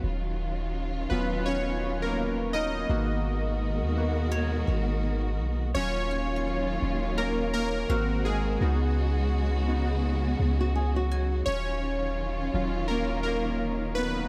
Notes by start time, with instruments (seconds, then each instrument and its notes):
Already playing: string section F#3, guzheng C#5 F5 F#5
0.04 808-style bass D#1, string section D#3 C#4 F4
1.10 808-style bass D#1, synth keys F#3 B3 C#4 F4 B4
1.46 synth keys C#4 C#5
2.02 synth keys A#3 A#4
2.53 synth keys D#4 D#5, guzheng A#4
2.89 808-style bass G#1, string section B2 D#3 G#3 F#4 A#4, synth keys A#3 B3 F#4
3.82 808-style bass D#2
3.97 synth keys A#3 B3 F#4
4.32 guzheng C#5
4.68 808-style bass G#1
5.39 808-style bass B1
5.75 808-style bass D#1, string section D#3 F#3 A#3 C#4 F4, synth keys F#3 C#4 F4 C#5
6.11 guzheng G#5
6.36 guzheng C#6
6.82 808-style bass D#1
7.18 synth keys A#3 A#4, guzheng A#5
7.54 synth keys A#3 A#4
7.89 808-style bass G#1, string section G#3 C4 F#4, synth keys A#3 C4 F#4, guzheng F5
8.25 synth keys G#3 G#4, guzheng F#5
8.61 808-style bass C#2, string section C#3 F#3 B3, synth keys B3 D#4 F#4
9.68 synth keys B3 D#4 F#4
10.40 808-style bass C#2
10.61 nylon-string guitar F#4
10.76 nylon-string guitar G#4
10.96 nylon-string guitar F#4
11.12 guzheng G#5
11.46 808-style bass D#1, string section D#3 C#4 F4, synth keys C#4 C#5
12.54 808-style bass D#1, synth keys F#3 C#4 F4
12.88 synth keys A#3 A#4
13.23 synth keys A#3 A#4
13.95 synth keys B3 B4